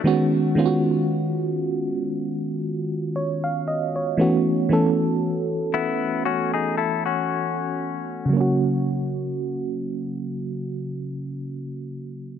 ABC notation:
X:1
M:4/4
L:1/16
Q:"Swing 16ths" 1/4=58
K:C#dor
V:1 name="Clean electric guitar"
z16 | z6 [B,E]2 [CF] [DG] [E=A] [CF]4- [CF] | z16 |]
V:2 name="FM electric piano"
z12 c ^e d c- | c z12 z3 | z16 |]
V:3 name="FM electric piano"
[D,G,B,CF]2 [D,G,B,C^EF]6 z8 | [E,=A,B,CF]2 [E,A,B,C=A]6 z8 | [C,F,A,CF]16 |]